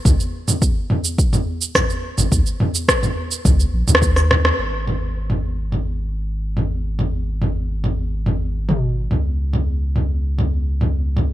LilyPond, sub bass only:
\new Staff \with { instrumentName = "Sub bass" } { \clef bass \time 4/4 \key dis \minor \tempo 4 = 106 cis,16 r2. r8 gis,,16 | dis,16 r4. r16 cis,16 r16 ais,,16 dis,4~ dis,16 | gis,,1~ | gis,,1 |
cis,1 | }